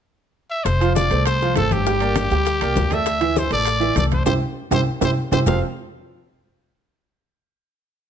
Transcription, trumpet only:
0.50 0.66 E5 medium
0.64 0.95 C5 medium
0.95 1.24 D5 loud
1.27 1.54 C5 loud
1.57 1.74 A4 medium
1.72 2.95 G4 medium
2.94 3.40 E5 medium
3.38 3.52 C5 medium
3.53 3.94 D5 loud
3.98 4.04 D5 medium
4.13 4.25 C5 medium
4.26 4.33 C5 medium
4.74 4.80 C5 medium
5.04 5.11 C5 medium
5.33 5.40 C5 medium
5.46 5.60 F5 medium

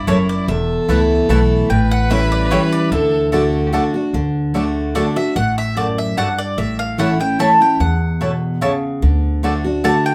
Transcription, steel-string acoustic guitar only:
0.08 0.46 F#2 medium
0.48 1.26 E2 medium
0.89 1.27 E3 medium
0.89 1.28 A3 medium
0.89 1.28 B3 loud
0.89 1.28 E4 medium
1.29 1.68 E3 medium
1.29 1.68 A3 medium
1.29 1.69 B3 medium
1.29 1.69 E4 medium
1.70 2.47 A2 medium
2.10 2.49 E3 medium
2.10 2.49 G3 medium
2.10 2.50 C#4 medium
2.10 2.50 E4 medium
2.51 2.90 E3 medium
2.51 2.90 G3 medium
2.51 2.90 C#4 medium
2.51 2.90 E4 medium
2.92 3.31 D3 medium
3.32 3.71 D3 medium
3.32 3.71 A3 medium
3.32 3.72 D4 medium
3.32 3.72 F#4 loud
3.73 3.93 D3 medium
3.73 3.94 A3 medium
3.73 3.94 D4 loud
3.73 3.93 F#4 medium
3.94 4.14 D4 soft
3.94 4.13 F#4 medium
4.14 4.53 D3 medium
4.54 4.93 D3 medium
4.54 4.93 A3 medium
4.54 4.94 D4 medium
4.54 4.94 F#4 medium
4.95 5.16 D3 medium
4.95 5.16 A3 medium
4.95 5.16 D4 medium
4.95 5.15 F#4 medium
5.16 5.36 D4 medium
5.16 5.35 F#4 medium
5.36 6.13 A2 medium
5.77 6.15 F#2 medium
6.17 6.56 G2 medium
6.58 7.36 A2 medium
6.98 7.19 E3 medium
6.98 7.19 A3 medium
6.98 7.20 C#4 medium
6.98 7.18 E4 medium
7.19 7.39 C#4 soft
7.19 7.38 E4 medium
7.39 7.60 E3 medium
7.39 7.60 A3 medium
7.39 7.60 C#4 medium
7.39 7.59 E4 medium
7.60 7.80 C#4 medium
7.60 7.79 E4 medium
7.80 8.58 E2 medium
8.21 8.60 B2 medium
8.62 9.01 C#3 medium
9.02 9.42 D3 medium
9.43 9.64 D3 medium
9.43 9.64 A3 medium
9.43 9.64 D4 medium
9.43 9.63 F#4 medium
9.64 9.84 D4 soft
9.64 9.83 F#4 medium
9.84 10.14 D3 medium
9.84 10.14 A3 medium
9.84 10.14 D4 medium
9.84 10.14 F#4 medium

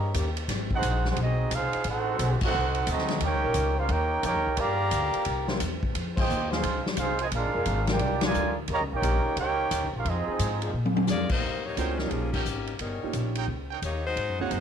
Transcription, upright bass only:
0.00 0.14 G2 loud
0.14 0.48 D#2 medium
0.48 0.81 G#1 medium
0.82 1.16 A#1 loud
1.17 1.50 B1 loud
1.51 1.72 C2 medium
1.75 muted upright bass stroke soft
1.85 2.18 A1 medium
2.19 2.40 B1 loud
2.55 2.87 C2 loud
2.87 3.20 D2 loud
3.21 3.33 D#2 medium
3.33 3.44 C#2 medium
3.44 3.54 A#1 medium
3.54 3.88 C#2 loud
3.89 4.22 D#2 medium
4.23 4.35 F2 loud
4.35 4.46 D#2 medium
4.47 4.57 C#2 medium
4.57 4.91 G2 medium
4.92 5.13 D2 loud
5.15 muted upright bass stroke soft
5.26 5.60 C2 medium
5.61 5.94 E2 medium
5.95 6.28 F2 medium
6.30 6.63 D#2 loud
6.64 6.84 C#2 medium
6.97 7.31 C2 medium
7.32 7.45 A#1 medium
7.45 7.54 G#1 medium
7.55 7.65 F1 medium
7.66 7.99 G#1 loud
8.00 8.33 C2 loud
8.35 8.67 D2 medium
8.68 8.81 D#2 loud
8.81 8.91 C#2 medium
8.92 9.02 A#1 medium
9.02 9.23 A#1 loud
9.26 muted upright bass stroke soft
9.36 9.70 C#2 medium
9.71 9.83 D#2 loud
9.83 9.93 C#2 medium
9.93 10.04 A#1 medium
10.05 10.26 F2 medium
10.27 muted upright bass stroke soft
10.39 10.73 G#2 loud
10.73 11.07 A#2 medium
11.08 11.29 F2 medium
11.43 11.76 D#2 medium
11.77 12.10 C#2 medium
12.11 12.44 A#1 medium
12.46 12.79 G#1 medium
12.79 13.00 G1 medium
13.03 muted upright bass stroke soft
13.14 13.47 A#1 medium
13.48 13.81 C#2 medium
13.82 14.15 D#2 medium
14.16 14.28 G#2 medium
14.28 14.39 F#2 medium
14.40 14.50 D#2 medium
14.51 14.60 F#2 loud

